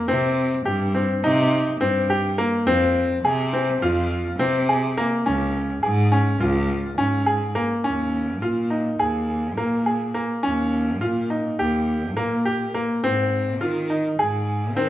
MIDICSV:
0, 0, Header, 1, 3, 480
1, 0, Start_track
1, 0, Tempo, 575816
1, 66, Time_signature, 9, 3, 24, 8
1, 12413, End_track
2, 0, Start_track
2, 0, Title_t, "Grand piano"
2, 0, Program_c, 0, 0
2, 67, Note_on_c, 0, 60, 77
2, 467, Note_off_c, 0, 60, 0
2, 546, Note_on_c, 0, 67, 66
2, 746, Note_off_c, 0, 67, 0
2, 788, Note_on_c, 0, 60, 61
2, 987, Note_off_c, 0, 60, 0
2, 1032, Note_on_c, 0, 63, 81
2, 1429, Note_off_c, 0, 63, 0
2, 1506, Note_on_c, 0, 60, 74
2, 1705, Note_off_c, 0, 60, 0
2, 1748, Note_on_c, 0, 67, 73
2, 1947, Note_off_c, 0, 67, 0
2, 1985, Note_on_c, 0, 58, 71
2, 2185, Note_off_c, 0, 58, 0
2, 2224, Note_on_c, 0, 60, 85
2, 2624, Note_off_c, 0, 60, 0
2, 2706, Note_on_c, 0, 68, 71
2, 2905, Note_off_c, 0, 68, 0
2, 2945, Note_on_c, 0, 60, 62
2, 3144, Note_off_c, 0, 60, 0
2, 3187, Note_on_c, 0, 65, 78
2, 3585, Note_off_c, 0, 65, 0
2, 3663, Note_on_c, 0, 60, 78
2, 3862, Note_off_c, 0, 60, 0
2, 3909, Note_on_c, 0, 68, 66
2, 4106, Note_off_c, 0, 68, 0
2, 4147, Note_on_c, 0, 58, 69
2, 4344, Note_off_c, 0, 58, 0
2, 4384, Note_on_c, 0, 61, 69
2, 4783, Note_off_c, 0, 61, 0
2, 4858, Note_on_c, 0, 68, 64
2, 5059, Note_off_c, 0, 68, 0
2, 5101, Note_on_c, 0, 61, 66
2, 5300, Note_off_c, 0, 61, 0
2, 5339, Note_on_c, 0, 65, 67
2, 5740, Note_off_c, 0, 65, 0
2, 5818, Note_on_c, 0, 61, 72
2, 6019, Note_off_c, 0, 61, 0
2, 6055, Note_on_c, 0, 68, 68
2, 6257, Note_off_c, 0, 68, 0
2, 6295, Note_on_c, 0, 58, 64
2, 6497, Note_off_c, 0, 58, 0
2, 6537, Note_on_c, 0, 61, 71
2, 6939, Note_off_c, 0, 61, 0
2, 7020, Note_on_c, 0, 65, 66
2, 7220, Note_off_c, 0, 65, 0
2, 7255, Note_on_c, 0, 63, 59
2, 7457, Note_off_c, 0, 63, 0
2, 7498, Note_on_c, 0, 68, 72
2, 7900, Note_off_c, 0, 68, 0
2, 7981, Note_on_c, 0, 58, 62
2, 8181, Note_off_c, 0, 58, 0
2, 8220, Note_on_c, 0, 68, 61
2, 8420, Note_off_c, 0, 68, 0
2, 8456, Note_on_c, 0, 58, 60
2, 8659, Note_off_c, 0, 58, 0
2, 8695, Note_on_c, 0, 61, 76
2, 9099, Note_off_c, 0, 61, 0
2, 9179, Note_on_c, 0, 65, 69
2, 9380, Note_off_c, 0, 65, 0
2, 9421, Note_on_c, 0, 63, 58
2, 9622, Note_off_c, 0, 63, 0
2, 9662, Note_on_c, 0, 67, 67
2, 10063, Note_off_c, 0, 67, 0
2, 10142, Note_on_c, 0, 58, 68
2, 10343, Note_off_c, 0, 58, 0
2, 10382, Note_on_c, 0, 67, 66
2, 10583, Note_off_c, 0, 67, 0
2, 10623, Note_on_c, 0, 58, 66
2, 10824, Note_off_c, 0, 58, 0
2, 10867, Note_on_c, 0, 60, 79
2, 11267, Note_off_c, 0, 60, 0
2, 11344, Note_on_c, 0, 65, 68
2, 11545, Note_off_c, 0, 65, 0
2, 11586, Note_on_c, 0, 63, 59
2, 11786, Note_off_c, 0, 63, 0
2, 11829, Note_on_c, 0, 68, 75
2, 12228, Note_off_c, 0, 68, 0
2, 12308, Note_on_c, 0, 60, 69
2, 12413, Note_off_c, 0, 60, 0
2, 12413, End_track
3, 0, Start_track
3, 0, Title_t, "Cello"
3, 0, Program_c, 1, 42
3, 65, Note_on_c, 1, 48, 82
3, 446, Note_off_c, 1, 48, 0
3, 543, Note_on_c, 1, 43, 92
3, 925, Note_off_c, 1, 43, 0
3, 1022, Note_on_c, 1, 48, 95
3, 1404, Note_off_c, 1, 48, 0
3, 1499, Note_on_c, 1, 43, 77
3, 2072, Note_off_c, 1, 43, 0
3, 2219, Note_on_c, 1, 41, 82
3, 2602, Note_off_c, 1, 41, 0
3, 2690, Note_on_c, 1, 48, 90
3, 3076, Note_off_c, 1, 48, 0
3, 3176, Note_on_c, 1, 41, 95
3, 3559, Note_off_c, 1, 41, 0
3, 3650, Note_on_c, 1, 48, 81
3, 4226, Note_off_c, 1, 48, 0
3, 4378, Note_on_c, 1, 37, 87
3, 4760, Note_off_c, 1, 37, 0
3, 4855, Note_on_c, 1, 44, 94
3, 5238, Note_off_c, 1, 44, 0
3, 5331, Note_on_c, 1, 37, 98
3, 5716, Note_off_c, 1, 37, 0
3, 5813, Note_on_c, 1, 44, 72
3, 6387, Note_off_c, 1, 44, 0
3, 6540, Note_on_c, 1, 39, 80
3, 7016, Note_on_c, 1, 46, 75
3, 7029, Note_off_c, 1, 39, 0
3, 7399, Note_off_c, 1, 46, 0
3, 7495, Note_on_c, 1, 39, 84
3, 7981, Note_on_c, 1, 46, 73
3, 7993, Note_off_c, 1, 39, 0
3, 8553, Note_off_c, 1, 46, 0
3, 8704, Note_on_c, 1, 39, 81
3, 9178, Note_on_c, 1, 46, 81
3, 9191, Note_off_c, 1, 39, 0
3, 9561, Note_off_c, 1, 46, 0
3, 9666, Note_on_c, 1, 39, 84
3, 10139, Note_on_c, 1, 46, 72
3, 10152, Note_off_c, 1, 39, 0
3, 10714, Note_off_c, 1, 46, 0
3, 10861, Note_on_c, 1, 44, 80
3, 11344, Note_on_c, 1, 51, 73
3, 11356, Note_off_c, 1, 44, 0
3, 11726, Note_off_c, 1, 51, 0
3, 11826, Note_on_c, 1, 44, 87
3, 12303, Note_on_c, 1, 51, 77
3, 12316, Note_off_c, 1, 44, 0
3, 12413, Note_off_c, 1, 51, 0
3, 12413, End_track
0, 0, End_of_file